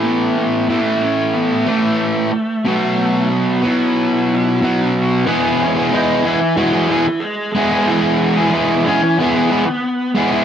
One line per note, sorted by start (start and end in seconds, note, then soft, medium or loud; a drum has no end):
0.00 0.66 A2 medium
0.00 0.66 E3 medium
0.00 0.67 A3 medium
0.00 0.35 B3 medium
0.37 0.83 B3 medium
0.68 1.65 A2 medium
0.68 1.66 E3 medium
0.68 1.65 A3 medium
0.83 0.98 A3 medium
1.02 1.32 C#4 medium
1.34 1.68 B3 medium
1.66 2.32 A2 medium
1.66 2.31 E3 medium
1.66 2.30 A3 medium
1.66 2.66 A3 medium
2.65 3.62 B2 medium
2.65 3.62 F#3 medium
2.65 3.28 A3 medium
2.65 3.61 B3 medium
3.31 3.62 B3 medium
3.62 4.60 B2 medium
3.62 4.60 F#3 medium
3.62 4.59 B3 medium
3.62 4.91 E4 medium
4.62 5.25 B2 medium
4.62 5.26 F#3 medium
4.62 5.26 B3 medium
5.26 5.92 E3 medium
5.26 5.93 G#3 medium
5.26 5.61 B3 medium
5.26 5.78 B3 medium
5.26 5.76 E4 medium
5.26 5.75 G#4 loud
5.26 5.58 B4 medium
5.59 5.68 C#4 medium
5.59 5.70 C#5 medium
5.75 5.94 B3 medium
5.75 5.94 E4 medium
5.75 5.95 G#4 medium
5.91 6.56 E3 medium
5.91 6.24 G#3 medium
5.91 6.25 B3 medium
5.91 6.23 D#4 loud
5.91 6.26 E4 medium
5.91 6.24 D#5 medium
5.96 6.27 G#4 medium
6.24 6.56 E3 medium
6.24 6.41 G#3 medium
6.24 6.41 B3 medium
6.24 6.58 E4 medium
6.24 6.40 E4 medium
6.24 6.40 G#4 medium
6.41 muted distorted electric guitar stroke medium
6.57 7.06 E3 loud
6.57 6.88 G#3 medium
6.57 6.75 B3 medium
6.57 6.73 E4 loud
6.57 6.91 F#4 medium
6.57 6.72 G#4 loud
6.61 6.90 F#3 medium
6.73 6.90 B3 medium
6.73 6.90 E4 medium
6.73 6.90 G#4 medium
6.88 7.06 G#3 medium
6.88 7.07 B3 medium
6.88 7.23 E4 loud
6.88 7.06 E4 medium
6.92 7.22 E3 medium
6.92 7.06 G#4 loud
7.07 muted distorted electric guitar stroke soft
7.20 7.54 G#3 medium
7.20 7.51 G#4 loud
7.53 7.88 G#3 medium
7.53 7.86 G#3 medium
7.53 7.73 B3 medium
7.53 7.88 G#4 loud
7.57 7.71 E4 medium
7.57 7.70 G#4 medium
7.71 7.89 B3 medium
7.71 7.89 E4 medium
7.71 7.90 G#4 medium
7.86 8.52 E3 medium
7.86 8.50 E3 medium
7.86 8.53 G#3 medium
7.86 8.48 E4 medium
7.90 8.39 B3 loud
7.90 8.36 E4 medium
7.90 8.35 G#4 loud
8.37 8.54 B3 medium
8.37 8.54 E4 medium
8.37 8.55 G#4 medium
8.53 9.18 E3 loud
8.53 8.85 G#3 medium
8.53 8.87 B3 loud
8.53 8.87 E4 loud
8.53 8.88 G#4 loud
8.85 9.04 G#3 medium
8.85 9.04 B3 medium
8.85 9.16 C#4 loud
8.85 9.03 E4 medium
8.85 9.03 G#4 medium
8.85 9.16 C#5 medium
9.04 muted distorted electric guitar stroke medium
9.18 9.68 E3 medium
9.18 9.50 G#3 loud
9.18 10.12 B3 loud
9.18 9.37 B3 loud
9.18 9.36 E4 loud
9.18 10.12 B4 medium
9.23 9.34 G#4 loud
9.35 9.51 B3 medium
9.35 9.51 E4 medium
9.35 9.52 G#4 medium
9.51 9.66 G#3 medium
9.51 9.66 B3 medium
9.51 9.66 E4 medium
9.51 9.65 G#4 medium
9.66 muted distorted electric guitar stroke medium
10.15 10.45 G#3 medium
10.15 10.33 B3 medium
10.15 10.32 E4 medium
10.15 10.31 G#4 medium
10.32 10.45 B3 medium
10.32 10.45 E4 medium
10.32 10.45 G#4 medium